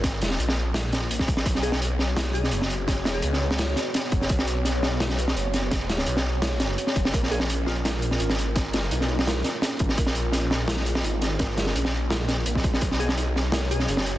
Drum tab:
HH |x-x-x---x-x-x-x-|x-x-x---x-x-x-x-|x-x-x---x-x-x-x-|x-x-x---x-x-x-x-|
SD |o-oo-o--o-o--o-o|-o-o--o-o--o-o--|o-o--o-oo-o-o--o|-o--o-o-oo-o--o-|
BD |o------------oo-|o---------------|o-------------o-|o---------------|

HH |x-x-x---x-x-x-x-|x-x-x---x-x-x-x-|x-x-x---x-x-x-x-|x-x-x---x-x-x-x-|
SD |o-oo-o--o-o--o-o|-o-o--o-o--o-o--|o-o--o-oo-o-o--o|-o--o-o-oo-o--o-|
BD |o-------------o-|o---------------|o-------------o-|o---------------|

HH |x-x-x---x-x-x-x-|x-x-x---x-x-x-x-|
SD |o-oo-o--o-o--o-o|-o-o--o-o--o-o--|
BD |o------------oo-|o---------------|